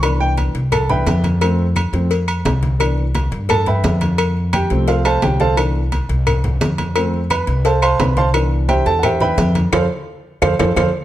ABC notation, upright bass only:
X:1
M:4/4
L:1/8
Q:1/4=173
K:C
V:1 name="Upright bass" clef=bass
C,,3 C,,3 F,,2- | F,,3 F,,3 C,,2- | C,,3 G,,3 F,,2- | F,,3 C,,3 C,,2- |
C,,3 C,,3 F,,2- | F,,3 C,,3 C,,2- | C,,3 E,,3 F,,2 | F,, z3 F,, F,, F,, z |]